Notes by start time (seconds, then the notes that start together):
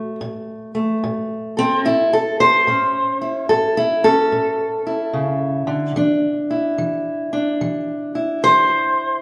Already playing: A2 A3
0.21 A2
0.75 A3
1.04 A2
1.57 C4 A4
1.85 A2 E4
2.13 A4
2.40 C5
2.67 A2 C#4
3.22 E4
3.49 A2 A4
3.77 E4
4.04 C#4 A4
4.32 A2
4.87 E4
5.13 C#3
5.67 D3
5.96 E3 D4
6.51 E4
6.78 E3
7.33 D4
7.61 E3
8.15 E4
8.44 E3 C5